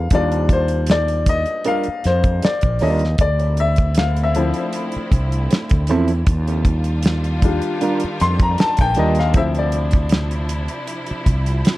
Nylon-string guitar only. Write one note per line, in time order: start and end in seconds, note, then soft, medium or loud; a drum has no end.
1.65 1.86 G3 medium
1.65 1.86 D4 medium
1.65 1.87 F4 medium
1.65 1.87 A#4 medium
2.42 muted nylon-string guitar stroke soft
2.81 3.02 G3 medium
2.81 3.02 D4 medium
2.81 3.03 F4 medium
2.81 3.03 A#4 medium
5.50 muted nylon-string guitar stroke soft
5.89 6.10 F3 medium
5.89 6.10 C4 medium
5.89 6.11 E4 medium
5.89 6.11 A4 medium
7.81 8.02 G3 medium
7.81 8.02 D4 medium
7.81 8.02 F4 medium
7.81 8.03 A#4 medium
8.58 muted nylon-string guitar stroke soft
8.96 9.17 G3 medium
8.96 9.18 D4 medium
8.96 9.18 F4 medium
8.96 9.18 A#4 medium
11.66 muted nylon-string guitar stroke soft